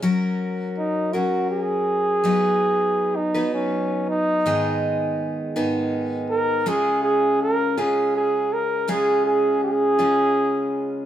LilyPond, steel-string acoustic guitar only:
\new Staff \with { instrumentName = "Steel-string acoustic guitar" } { \time 6/8 \key fis \major \tempo 4. = 54 <fis cis' fis' ais'>4. <fis cis' fis' ais'>4. | <fis b dis' b'>4. <fis b dis' b'>4. | <gis, dis gis b dis' gis'>4. <gis, dis gis b dis' gis'>4. | <cis gis cis' eis' gis'>4. <cis gis cis' eis' gis'>4. |
<cis gis cis' eis' gis'>4. <cis gis cis' eis' gis'>4. | }